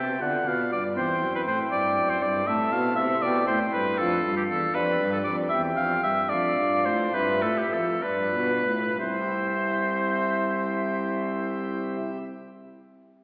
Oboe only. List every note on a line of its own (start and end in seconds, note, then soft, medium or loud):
0.00 0.23 G5 medium
0.21 0.49 F#5 medium
0.48 0.72 F5 medium
0.72 0.84 D5 medium
0.97 1.34 C5 medium
1.35 1.41 B4 medium
1.48 1.59 C5 medium
1.71 2.11 D5 medium
2.10 2.24 C5 medium
2.22 2.48 D5 medium
2.47 2.74 E5 medium
2.72 2.95 F5 medium
2.95 3.24 E5 medium
3.22 3.47 D5 medium
3.47 3.59 C5 medium
3.73 3.99 B4 medium
3.98 4.36 A4 medium
4.37 4.43 G4 medium
4.49 4.76 A4 medium
4.75 5.12 B4 medium
5.12 5.18 A4 medium
5.24 5.36 D5 medium
5.49 5.62 E5 medium
5.76 6.02 F5 medium
6.03 6.30 E5 medium
6.29 6.87 D5 medium
6.85 7.15 C5 medium
7.14 7.44 B4 medium
7.42 7.59 A4 medium
7.57 7.74 G4 medium
7.73 8.04 A4 medium
8.03 8.98 B4 medium
8.99 11.96 C5 medium